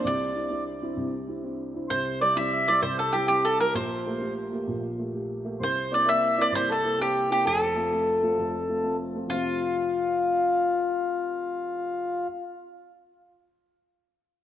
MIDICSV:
0, 0, Header, 1, 4, 480
1, 0, Start_track
1, 0, Key_signature, -1, "major"
1, 0, Tempo, 308325
1, 73, Time_signature, 12, 3, 24, 8
1, 22479, End_track
2, 0, Start_track
2, 0, Title_t, "Accordion"
2, 0, Program_c, 0, 21
2, 69, Note_on_c, 0, 74, 88
2, 986, Note_off_c, 0, 74, 0
2, 2933, Note_on_c, 0, 72, 76
2, 3446, Note_off_c, 0, 72, 0
2, 3448, Note_on_c, 0, 74, 96
2, 3671, Note_on_c, 0, 76, 107
2, 3682, Note_off_c, 0, 74, 0
2, 3911, Note_off_c, 0, 76, 0
2, 3934, Note_on_c, 0, 76, 95
2, 4374, Note_on_c, 0, 72, 93
2, 4409, Note_off_c, 0, 76, 0
2, 4622, Note_off_c, 0, 72, 0
2, 4641, Note_on_c, 0, 69, 83
2, 4861, Note_off_c, 0, 69, 0
2, 4870, Note_on_c, 0, 67, 79
2, 5082, Note_off_c, 0, 67, 0
2, 5106, Note_on_c, 0, 67, 75
2, 5363, Note_on_c, 0, 69, 85
2, 5375, Note_off_c, 0, 67, 0
2, 5582, Note_off_c, 0, 69, 0
2, 5595, Note_on_c, 0, 70, 68
2, 5825, Note_on_c, 0, 72, 74
2, 5837, Note_off_c, 0, 70, 0
2, 6746, Note_off_c, 0, 72, 0
2, 8720, Note_on_c, 0, 72, 90
2, 9216, Note_on_c, 0, 74, 91
2, 9223, Note_off_c, 0, 72, 0
2, 9428, Note_off_c, 0, 74, 0
2, 9437, Note_on_c, 0, 76, 105
2, 9893, Note_off_c, 0, 76, 0
2, 9931, Note_on_c, 0, 74, 86
2, 10154, Note_on_c, 0, 72, 98
2, 10168, Note_off_c, 0, 74, 0
2, 10423, Note_off_c, 0, 72, 0
2, 10426, Note_on_c, 0, 69, 94
2, 10875, Note_on_c, 0, 67, 73
2, 10899, Note_off_c, 0, 69, 0
2, 11333, Note_off_c, 0, 67, 0
2, 11378, Note_on_c, 0, 67, 74
2, 11598, Note_on_c, 0, 69, 88
2, 11613, Note_off_c, 0, 67, 0
2, 13956, Note_off_c, 0, 69, 0
2, 14475, Note_on_c, 0, 65, 107
2, 19109, Note_off_c, 0, 65, 0
2, 22479, End_track
3, 0, Start_track
3, 0, Title_t, "Mandolin"
3, 0, Program_c, 1, 25
3, 107, Note_on_c, 1, 74, 90
3, 1005, Note_off_c, 1, 74, 0
3, 2962, Note_on_c, 1, 72, 97
3, 3412, Note_off_c, 1, 72, 0
3, 3446, Note_on_c, 1, 74, 83
3, 3682, Note_off_c, 1, 74, 0
3, 3686, Note_on_c, 1, 76, 118
3, 4171, Note_on_c, 1, 74, 96
3, 4183, Note_off_c, 1, 76, 0
3, 4391, Note_off_c, 1, 74, 0
3, 4397, Note_on_c, 1, 72, 99
3, 4635, Note_off_c, 1, 72, 0
3, 4653, Note_on_c, 1, 69, 84
3, 4867, Note_on_c, 1, 67, 81
3, 4890, Note_off_c, 1, 69, 0
3, 5090, Note_off_c, 1, 67, 0
3, 5108, Note_on_c, 1, 67, 101
3, 5367, Note_on_c, 1, 69, 96
3, 5376, Note_off_c, 1, 67, 0
3, 5584, Note_off_c, 1, 69, 0
3, 5609, Note_on_c, 1, 70, 98
3, 5821, Note_off_c, 1, 70, 0
3, 5845, Note_on_c, 1, 72, 95
3, 6756, Note_off_c, 1, 72, 0
3, 8771, Note_on_c, 1, 72, 103
3, 9243, Note_off_c, 1, 72, 0
3, 9249, Note_on_c, 1, 74, 90
3, 9466, Note_off_c, 1, 74, 0
3, 9476, Note_on_c, 1, 76, 114
3, 9961, Note_off_c, 1, 76, 0
3, 9985, Note_on_c, 1, 74, 113
3, 10195, Note_off_c, 1, 74, 0
3, 10202, Note_on_c, 1, 72, 109
3, 10446, Note_off_c, 1, 72, 0
3, 10461, Note_on_c, 1, 69, 92
3, 10872, Note_off_c, 1, 69, 0
3, 10920, Note_on_c, 1, 67, 92
3, 11357, Note_off_c, 1, 67, 0
3, 11397, Note_on_c, 1, 67, 87
3, 11600, Note_off_c, 1, 67, 0
3, 11629, Note_on_c, 1, 69, 94
3, 13972, Note_off_c, 1, 69, 0
3, 14475, Note_on_c, 1, 65, 83
3, 19109, Note_off_c, 1, 65, 0
3, 22479, End_track
4, 0, Start_track
4, 0, Title_t, "Upright piano"
4, 0, Program_c, 2, 0
4, 68, Note_on_c, 2, 36, 63
4, 74, Note_on_c, 2, 48, 68
4, 548, Note_on_c, 2, 60, 52
4, 560, Note_on_c, 2, 62, 51
4, 564, Note_on_c, 2, 64, 55
4, 766, Note_off_c, 2, 60, 0
4, 767, Note_off_c, 2, 62, 0
4, 774, Note_off_c, 2, 64, 0
4, 789, Note_on_c, 2, 60, 53
4, 790, Note_on_c, 2, 62, 46
4, 797, Note_on_c, 2, 64, 64
4, 1257, Note_off_c, 2, 60, 0
4, 1260, Note_off_c, 2, 62, 0
4, 1266, Note_off_c, 2, 64, 0
4, 1280, Note_on_c, 2, 60, 61
4, 1283, Note_on_c, 2, 62, 50
4, 1289, Note_on_c, 2, 64, 71
4, 1478, Note_off_c, 2, 48, 0
4, 1484, Note_off_c, 2, 36, 0
4, 1501, Note_on_c, 2, 48, 63
4, 1508, Note_on_c, 2, 36, 66
4, 1754, Note_off_c, 2, 60, 0
4, 1756, Note_off_c, 2, 62, 0
4, 1759, Note_off_c, 2, 64, 0
4, 1993, Note_on_c, 2, 60, 44
4, 1994, Note_on_c, 2, 62, 46
4, 2002, Note_on_c, 2, 64, 51
4, 2213, Note_off_c, 2, 60, 0
4, 2221, Note_off_c, 2, 64, 0
4, 2222, Note_off_c, 2, 62, 0
4, 2237, Note_on_c, 2, 60, 46
4, 2245, Note_on_c, 2, 62, 49
4, 2245, Note_on_c, 2, 64, 54
4, 2692, Note_off_c, 2, 60, 0
4, 2701, Note_off_c, 2, 62, 0
4, 2709, Note_off_c, 2, 64, 0
4, 2716, Note_on_c, 2, 60, 53
4, 2724, Note_on_c, 2, 62, 48
4, 2733, Note_on_c, 2, 64, 55
4, 2888, Note_off_c, 2, 36, 0
4, 2903, Note_off_c, 2, 48, 0
4, 2943, Note_off_c, 2, 60, 0
4, 2947, Note_off_c, 2, 62, 0
4, 2951, Note_off_c, 2, 64, 0
4, 2955, Note_on_c, 2, 36, 53
4, 2957, Note_on_c, 2, 48, 71
4, 3436, Note_on_c, 2, 55, 50
4, 3448, Note_on_c, 2, 60, 46
4, 3450, Note_on_c, 2, 64, 56
4, 3632, Note_off_c, 2, 55, 0
4, 3647, Note_off_c, 2, 60, 0
4, 3652, Note_off_c, 2, 64, 0
4, 3656, Note_on_c, 2, 55, 53
4, 3670, Note_on_c, 2, 60, 51
4, 3675, Note_on_c, 2, 64, 56
4, 4136, Note_off_c, 2, 55, 0
4, 4146, Note_off_c, 2, 60, 0
4, 4147, Note_off_c, 2, 64, 0
4, 4160, Note_on_c, 2, 55, 58
4, 4170, Note_on_c, 2, 64, 67
4, 4171, Note_on_c, 2, 60, 58
4, 4367, Note_off_c, 2, 48, 0
4, 4369, Note_off_c, 2, 36, 0
4, 4390, Note_on_c, 2, 48, 62
4, 4392, Note_on_c, 2, 36, 63
4, 4635, Note_off_c, 2, 55, 0
4, 4640, Note_off_c, 2, 64, 0
4, 4641, Note_off_c, 2, 60, 0
4, 4876, Note_on_c, 2, 55, 54
4, 4883, Note_on_c, 2, 60, 46
4, 4890, Note_on_c, 2, 64, 57
4, 5093, Note_off_c, 2, 55, 0
4, 5096, Note_off_c, 2, 60, 0
4, 5106, Note_off_c, 2, 64, 0
4, 5116, Note_on_c, 2, 55, 46
4, 5119, Note_on_c, 2, 60, 47
4, 5130, Note_on_c, 2, 64, 58
4, 5565, Note_off_c, 2, 55, 0
4, 5573, Note_off_c, 2, 60, 0
4, 5580, Note_off_c, 2, 64, 0
4, 5588, Note_on_c, 2, 55, 57
4, 5596, Note_on_c, 2, 60, 49
4, 5603, Note_on_c, 2, 64, 63
4, 5772, Note_off_c, 2, 36, 0
4, 5789, Note_off_c, 2, 48, 0
4, 5820, Note_off_c, 2, 55, 0
4, 5824, Note_off_c, 2, 60, 0
4, 5827, Note_off_c, 2, 64, 0
4, 5828, Note_on_c, 2, 46, 64
4, 5833, Note_on_c, 2, 34, 63
4, 6319, Note_on_c, 2, 57, 58
4, 6323, Note_on_c, 2, 58, 50
4, 6333, Note_on_c, 2, 67, 54
4, 6529, Note_off_c, 2, 57, 0
4, 6535, Note_off_c, 2, 58, 0
4, 6542, Note_off_c, 2, 67, 0
4, 6553, Note_on_c, 2, 57, 56
4, 6558, Note_on_c, 2, 58, 49
4, 6566, Note_on_c, 2, 67, 60
4, 7018, Note_off_c, 2, 57, 0
4, 7027, Note_off_c, 2, 58, 0
4, 7033, Note_off_c, 2, 67, 0
4, 7041, Note_on_c, 2, 57, 58
4, 7050, Note_on_c, 2, 58, 55
4, 7057, Note_on_c, 2, 67, 63
4, 7253, Note_off_c, 2, 46, 0
4, 7255, Note_off_c, 2, 34, 0
4, 7277, Note_on_c, 2, 46, 65
4, 7278, Note_on_c, 2, 34, 60
4, 7518, Note_off_c, 2, 57, 0
4, 7522, Note_off_c, 2, 58, 0
4, 7526, Note_off_c, 2, 67, 0
4, 7763, Note_on_c, 2, 57, 50
4, 7770, Note_on_c, 2, 58, 43
4, 7774, Note_on_c, 2, 67, 49
4, 7978, Note_off_c, 2, 57, 0
4, 7985, Note_off_c, 2, 58, 0
4, 7995, Note_off_c, 2, 67, 0
4, 8001, Note_on_c, 2, 57, 48
4, 8008, Note_on_c, 2, 58, 47
4, 8018, Note_on_c, 2, 67, 58
4, 8457, Note_off_c, 2, 57, 0
4, 8464, Note_off_c, 2, 58, 0
4, 8471, Note_off_c, 2, 67, 0
4, 8480, Note_on_c, 2, 57, 62
4, 8488, Note_on_c, 2, 58, 58
4, 8494, Note_on_c, 2, 67, 64
4, 8657, Note_off_c, 2, 34, 0
4, 8675, Note_off_c, 2, 46, 0
4, 8708, Note_off_c, 2, 57, 0
4, 8712, Note_off_c, 2, 58, 0
4, 8715, Note_off_c, 2, 67, 0
4, 8716, Note_on_c, 2, 48, 56
4, 8718, Note_on_c, 2, 36, 58
4, 9196, Note_on_c, 2, 58, 57
4, 9206, Note_on_c, 2, 60, 46
4, 9212, Note_on_c, 2, 64, 60
4, 9399, Note_off_c, 2, 58, 0
4, 9410, Note_off_c, 2, 60, 0
4, 9412, Note_off_c, 2, 64, 0
4, 9422, Note_on_c, 2, 58, 56
4, 9433, Note_on_c, 2, 60, 55
4, 9436, Note_on_c, 2, 64, 62
4, 9893, Note_off_c, 2, 58, 0
4, 9896, Note_off_c, 2, 60, 0
4, 9907, Note_off_c, 2, 64, 0
4, 9917, Note_on_c, 2, 58, 63
4, 9920, Note_on_c, 2, 60, 56
4, 9930, Note_on_c, 2, 64, 72
4, 10130, Note_off_c, 2, 36, 0
4, 10134, Note_off_c, 2, 48, 0
4, 10153, Note_on_c, 2, 36, 67
4, 10157, Note_on_c, 2, 48, 67
4, 10397, Note_off_c, 2, 58, 0
4, 10399, Note_off_c, 2, 60, 0
4, 10404, Note_off_c, 2, 64, 0
4, 10640, Note_on_c, 2, 58, 52
4, 10642, Note_on_c, 2, 60, 47
4, 10653, Note_on_c, 2, 64, 62
4, 10848, Note_off_c, 2, 58, 0
4, 10859, Note_off_c, 2, 60, 0
4, 10862, Note_off_c, 2, 64, 0
4, 10871, Note_on_c, 2, 58, 50
4, 10882, Note_on_c, 2, 60, 52
4, 10886, Note_on_c, 2, 64, 54
4, 11336, Note_off_c, 2, 58, 0
4, 11340, Note_off_c, 2, 60, 0
4, 11348, Note_off_c, 2, 64, 0
4, 11360, Note_on_c, 2, 58, 54
4, 11363, Note_on_c, 2, 60, 54
4, 11371, Note_on_c, 2, 64, 65
4, 11536, Note_off_c, 2, 36, 0
4, 11557, Note_off_c, 2, 48, 0
4, 11590, Note_off_c, 2, 58, 0
4, 11591, Note_off_c, 2, 60, 0
4, 11595, Note_off_c, 2, 64, 0
4, 11603, Note_on_c, 2, 41, 66
4, 11609, Note_on_c, 2, 29, 59
4, 12084, Note_on_c, 2, 57, 56
4, 12087, Note_on_c, 2, 60, 50
4, 12099, Note_on_c, 2, 65, 60
4, 12300, Note_off_c, 2, 57, 0
4, 12302, Note_off_c, 2, 60, 0
4, 12305, Note_off_c, 2, 65, 0
4, 12324, Note_on_c, 2, 57, 50
4, 12325, Note_on_c, 2, 60, 43
4, 12328, Note_on_c, 2, 65, 58
4, 12775, Note_off_c, 2, 57, 0
4, 12779, Note_off_c, 2, 60, 0
4, 12797, Note_off_c, 2, 65, 0
4, 12798, Note_on_c, 2, 57, 61
4, 12802, Note_on_c, 2, 60, 51
4, 12821, Note_on_c, 2, 65, 61
4, 13018, Note_off_c, 2, 29, 0
4, 13024, Note_off_c, 2, 41, 0
4, 13041, Note_on_c, 2, 29, 62
4, 13048, Note_on_c, 2, 41, 65
4, 13279, Note_off_c, 2, 57, 0
4, 13281, Note_off_c, 2, 60, 0
4, 13290, Note_off_c, 2, 65, 0
4, 13526, Note_on_c, 2, 57, 46
4, 13526, Note_on_c, 2, 60, 42
4, 13529, Note_on_c, 2, 65, 50
4, 13728, Note_off_c, 2, 57, 0
4, 13730, Note_off_c, 2, 60, 0
4, 13736, Note_off_c, 2, 65, 0
4, 13751, Note_on_c, 2, 57, 50
4, 13753, Note_on_c, 2, 60, 49
4, 13759, Note_on_c, 2, 65, 50
4, 14226, Note_off_c, 2, 57, 0
4, 14232, Note_off_c, 2, 60, 0
4, 14235, Note_off_c, 2, 65, 0
4, 14250, Note_on_c, 2, 57, 54
4, 14257, Note_on_c, 2, 60, 51
4, 14262, Note_on_c, 2, 65, 58
4, 14390, Note_off_c, 2, 41, 0
4, 14414, Note_on_c, 2, 41, 52
4, 14420, Note_off_c, 2, 29, 0
4, 14444, Note_on_c, 2, 48, 49
4, 14475, Note_off_c, 2, 57, 0
4, 14479, Note_off_c, 2, 60, 0
4, 14481, Note_off_c, 2, 65, 0
4, 14481, Note_on_c, 2, 53, 47
4, 14523, Note_on_c, 2, 57, 45
4, 14561, Note_on_c, 2, 60, 59
4, 19047, Note_off_c, 2, 41, 0
4, 19078, Note_off_c, 2, 48, 0
4, 19115, Note_off_c, 2, 53, 0
4, 19156, Note_off_c, 2, 57, 0
4, 19194, Note_off_c, 2, 60, 0
4, 22479, End_track
0, 0, End_of_file